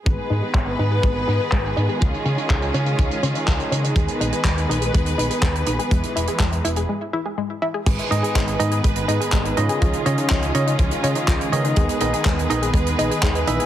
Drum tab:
CC |----------------|----------------|----------------|----------------|
HH |xxxx-xxxxxxxxxxx|xxxxxxxxxxxxxxxx|xxxxxxxxxxxxxxxx|xxxxxxxx--------|
CP |----x-------x---|----x-------x---|----x-------x---|----x-----------|
BD |o---o---o---o---|o---o---o---o---|o---o---o---o---|o---o-----------|

CC |x---------------|----------------|----------------|
HH |xxxxxxxxxxxxxxxx|xxxxxxxxxxxxxxxx|xxxxxxxxxxxxxxxx|
CP |----x-------x---|----x-------x---|----x-------x---|
BD |o---o---o---o---|o---o---o---o---|o---o---o---o---|